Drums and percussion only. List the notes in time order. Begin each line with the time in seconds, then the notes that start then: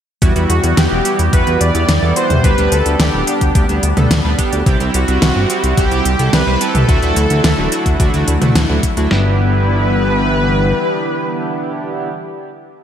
0.22 kick, closed hi-hat
0.36 closed hi-hat
0.50 closed hi-hat
0.64 closed hi-hat
0.77 snare, closed hi-hat
1.05 closed hi-hat
1.19 closed hi-hat
1.33 kick, closed hi-hat
1.47 closed hi-hat
1.61 closed hi-hat
1.75 closed hi-hat
1.89 snare, closed hi-hat
2.16 closed hi-hat
2.30 closed hi-hat, mid tom
2.44 kick, closed hi-hat
2.58 closed hi-hat
2.72 closed hi-hat
2.86 closed hi-hat
3.00 snare, closed hi-hat
3.27 closed hi-hat
3.41 kick, closed hi-hat
3.55 kick, closed hi-hat
3.69 closed hi-hat
3.83 closed hi-hat
3.97 closed hi-hat, mid tom
4.11 snare, closed hi-hat
4.39 kick, closed hi-hat
4.53 closed hi-hat
4.66 kick, closed hi-hat
4.80 closed hi-hat
4.94 closed hi-hat
5.08 closed hi-hat
5.22 snare, closed hi-hat
5.50 closed hi-hat
5.64 closed hi-hat
5.78 kick, closed hi-hat
5.91 closed hi-hat
6.05 closed hi-hat
6.19 closed hi-hat
6.33 snare, closed hi-hat
6.61 closed hi-hat
6.75 closed hi-hat, mid tom
6.89 kick, closed hi-hat
7.02 closed hi-hat
7.16 closed hi-hat
7.30 closed hi-hat
7.44 snare, closed hi-hat
7.72 closed hi-hat
7.86 kick, closed hi-hat
8.00 kick, closed hi-hat
8.14 closed hi-hat
8.28 closed hi-hat
8.42 closed hi-hat, mid tom
8.55 snare, closed hi-hat
8.83 kick, closed hi-hat
8.97 closed hi-hat
9.11 snare